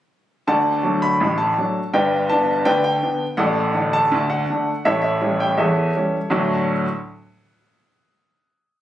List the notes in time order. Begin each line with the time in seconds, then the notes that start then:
0.47 D2 D3 D5 F#5 A5
0.83 F#3 A3 D4
1.02 B5
1.20 A1 A2
1.38 A5
1.58 F#3 A3 D4
1.93 G1 G2 B4 D5 G5
2.29 D3 B3 D4 A5
2.65 D2 D3 B4 D5 G5
2.84 G5
3.03 D3 B3 D4
3.37 A1 A2 A4 D5 F#5
3.75 D3 A3 D4
3.93 A5
4.12 D2 D3
4.30 F#5
4.50 D3 A3 D4
4.85 A1 A2 A4 C#5 E5
5.02 E5
5.21 E3 G3 C#4
5.40 G5
5.57 E2 E3 A4 C#5 E5
5.95 E3 G3 C#4
6.30 D2 A2 F#3 A3 D4 F#4 D5